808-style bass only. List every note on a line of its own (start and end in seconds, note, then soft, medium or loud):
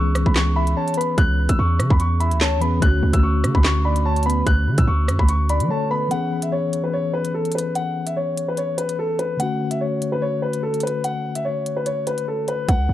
0.00 0.24 C#2 loud
0.26 0.75 C#2 loud
1.18 1.48 C#2 loud
1.49 1.58 C#2 loud
1.59 1.81 E2 loud
1.79 1.90 C#3 loud
1.90 2.33 E2 loud
2.31 2.58 D2 loud
2.57 2.81 E2 loud
2.82 3.02 D2 loud
3.03 3.13 D2 loud
3.14 3.45 D2 loud
3.44 3.54 D3 loud
3.55 4.43 D2 loud
4.47 4.69 D2 loud
4.67 4.78 D3 loud
4.78 4.87 A2 loud
4.88 5.10 D2 loud
5.08 5.19 F#2 loud
5.19 5.62 D2 loud
5.60 5.70 F#3 loud
12.69 12.88 C#2 loud
12.89 12.94 B1 loud